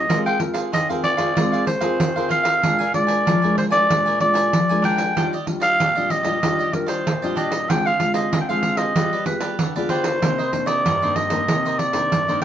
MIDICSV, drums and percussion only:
0, 0, Header, 1, 2, 480
1, 0, Start_track
1, 0, Key_signature, -3, "major"
1, 0, Tempo, 632244
1, 71, Time_signature, 4, 2, 24, 8
1, 9448, End_track
2, 0, Start_track
2, 0, Title_t, "Pandeiro"
2, 73, Note_on_c, 9, 54, 79
2, 149, Note_off_c, 9, 54, 0
2, 201, Note_on_c, 9, 54, 31
2, 276, Note_off_c, 9, 54, 0
2, 302, Note_on_c, 9, 54, 61
2, 378, Note_off_c, 9, 54, 0
2, 413, Note_on_c, 9, 54, 65
2, 489, Note_off_c, 9, 54, 0
2, 556, Note_on_c, 9, 54, 75
2, 632, Note_off_c, 9, 54, 0
2, 684, Note_on_c, 9, 54, 34
2, 760, Note_off_c, 9, 54, 0
2, 787, Note_on_c, 9, 54, 61
2, 863, Note_off_c, 9, 54, 0
2, 897, Note_on_c, 9, 54, 65
2, 973, Note_off_c, 9, 54, 0
2, 1038, Note_on_c, 9, 54, 84
2, 1114, Note_off_c, 9, 54, 0
2, 1166, Note_on_c, 9, 54, 34
2, 1242, Note_off_c, 9, 54, 0
2, 1268, Note_on_c, 9, 54, 66
2, 1344, Note_off_c, 9, 54, 0
2, 1377, Note_on_c, 9, 54, 70
2, 1453, Note_off_c, 9, 54, 0
2, 1517, Note_on_c, 9, 54, 86
2, 1593, Note_off_c, 9, 54, 0
2, 1649, Note_on_c, 9, 54, 35
2, 1724, Note_off_c, 9, 54, 0
2, 1750, Note_on_c, 9, 54, 57
2, 1826, Note_off_c, 9, 54, 0
2, 1860, Note_on_c, 9, 54, 74
2, 1936, Note_off_c, 9, 54, 0
2, 1999, Note_on_c, 9, 54, 84
2, 2075, Note_off_c, 9, 54, 0
2, 2131, Note_on_c, 9, 54, 34
2, 2207, Note_off_c, 9, 54, 0
2, 2233, Note_on_c, 9, 54, 59
2, 2309, Note_off_c, 9, 54, 0
2, 2341, Note_on_c, 9, 54, 64
2, 2417, Note_off_c, 9, 54, 0
2, 2482, Note_on_c, 9, 54, 82
2, 2558, Note_off_c, 9, 54, 0
2, 2613, Note_on_c, 9, 54, 32
2, 2689, Note_off_c, 9, 54, 0
2, 2716, Note_on_c, 9, 54, 60
2, 2792, Note_off_c, 9, 54, 0
2, 2825, Note_on_c, 9, 54, 67
2, 2901, Note_off_c, 9, 54, 0
2, 2963, Note_on_c, 9, 54, 84
2, 3039, Note_off_c, 9, 54, 0
2, 3091, Note_on_c, 9, 54, 33
2, 3167, Note_off_c, 9, 54, 0
2, 3191, Note_on_c, 9, 54, 56
2, 3267, Note_off_c, 9, 54, 0
2, 3303, Note_on_c, 9, 54, 70
2, 3379, Note_off_c, 9, 54, 0
2, 3441, Note_on_c, 9, 54, 82
2, 3516, Note_off_c, 9, 54, 0
2, 3570, Note_on_c, 9, 54, 35
2, 3646, Note_off_c, 9, 54, 0
2, 3673, Note_on_c, 9, 54, 58
2, 3749, Note_off_c, 9, 54, 0
2, 3783, Note_on_c, 9, 54, 67
2, 3859, Note_off_c, 9, 54, 0
2, 3923, Note_on_c, 9, 54, 80
2, 3999, Note_off_c, 9, 54, 0
2, 4049, Note_on_c, 9, 54, 33
2, 4125, Note_off_c, 9, 54, 0
2, 4154, Note_on_c, 9, 54, 62
2, 4229, Note_off_c, 9, 54, 0
2, 4263, Note_on_c, 9, 54, 68
2, 4339, Note_off_c, 9, 54, 0
2, 4405, Note_on_c, 9, 54, 78
2, 4481, Note_off_c, 9, 54, 0
2, 4533, Note_on_c, 9, 54, 29
2, 4609, Note_off_c, 9, 54, 0
2, 4633, Note_on_c, 9, 54, 58
2, 4709, Note_off_c, 9, 54, 0
2, 4741, Note_on_c, 9, 54, 67
2, 4817, Note_off_c, 9, 54, 0
2, 4881, Note_on_c, 9, 54, 84
2, 4957, Note_off_c, 9, 54, 0
2, 5011, Note_on_c, 9, 54, 35
2, 5087, Note_off_c, 9, 54, 0
2, 5112, Note_on_c, 9, 54, 58
2, 5188, Note_off_c, 9, 54, 0
2, 5224, Note_on_c, 9, 54, 68
2, 5300, Note_off_c, 9, 54, 0
2, 5366, Note_on_c, 9, 54, 83
2, 5442, Note_off_c, 9, 54, 0
2, 5492, Note_on_c, 9, 54, 36
2, 5568, Note_off_c, 9, 54, 0
2, 5594, Note_on_c, 9, 54, 60
2, 5670, Note_off_c, 9, 54, 0
2, 5706, Note_on_c, 9, 54, 74
2, 5782, Note_off_c, 9, 54, 0
2, 5845, Note_on_c, 9, 54, 81
2, 5920, Note_off_c, 9, 54, 0
2, 5972, Note_on_c, 9, 54, 34
2, 6048, Note_off_c, 9, 54, 0
2, 6072, Note_on_c, 9, 54, 61
2, 6148, Note_off_c, 9, 54, 0
2, 6181, Note_on_c, 9, 54, 65
2, 6257, Note_off_c, 9, 54, 0
2, 6322, Note_on_c, 9, 54, 86
2, 6398, Note_off_c, 9, 54, 0
2, 6451, Note_on_c, 9, 54, 29
2, 6527, Note_off_c, 9, 54, 0
2, 6550, Note_on_c, 9, 54, 62
2, 6626, Note_off_c, 9, 54, 0
2, 6660, Note_on_c, 9, 54, 67
2, 6736, Note_off_c, 9, 54, 0
2, 6799, Note_on_c, 9, 54, 84
2, 6875, Note_off_c, 9, 54, 0
2, 6930, Note_on_c, 9, 54, 32
2, 7006, Note_off_c, 9, 54, 0
2, 7029, Note_on_c, 9, 54, 64
2, 7105, Note_off_c, 9, 54, 0
2, 7140, Note_on_c, 9, 54, 71
2, 7216, Note_off_c, 9, 54, 0
2, 7279, Note_on_c, 9, 54, 81
2, 7355, Note_off_c, 9, 54, 0
2, 7407, Note_on_c, 9, 54, 35
2, 7482, Note_off_c, 9, 54, 0
2, 7509, Note_on_c, 9, 54, 60
2, 7585, Note_off_c, 9, 54, 0
2, 7623, Note_on_c, 9, 54, 79
2, 7699, Note_off_c, 9, 54, 0
2, 7762, Note_on_c, 9, 54, 83
2, 7838, Note_off_c, 9, 54, 0
2, 7890, Note_on_c, 9, 54, 33
2, 7966, Note_off_c, 9, 54, 0
2, 7993, Note_on_c, 9, 54, 60
2, 8069, Note_off_c, 9, 54, 0
2, 8103, Note_on_c, 9, 54, 67
2, 8179, Note_off_c, 9, 54, 0
2, 8243, Note_on_c, 9, 54, 84
2, 8319, Note_off_c, 9, 54, 0
2, 8370, Note_on_c, 9, 54, 31
2, 8446, Note_off_c, 9, 54, 0
2, 8471, Note_on_c, 9, 54, 60
2, 8547, Note_off_c, 9, 54, 0
2, 8580, Note_on_c, 9, 54, 72
2, 8656, Note_off_c, 9, 54, 0
2, 8718, Note_on_c, 9, 54, 84
2, 8794, Note_off_c, 9, 54, 0
2, 8850, Note_on_c, 9, 54, 34
2, 8926, Note_off_c, 9, 54, 0
2, 8952, Note_on_c, 9, 54, 62
2, 9028, Note_off_c, 9, 54, 0
2, 9059, Note_on_c, 9, 54, 67
2, 9135, Note_off_c, 9, 54, 0
2, 9201, Note_on_c, 9, 54, 80
2, 9277, Note_off_c, 9, 54, 0
2, 9328, Note_on_c, 9, 54, 36
2, 9404, Note_off_c, 9, 54, 0
2, 9448, End_track
0, 0, End_of_file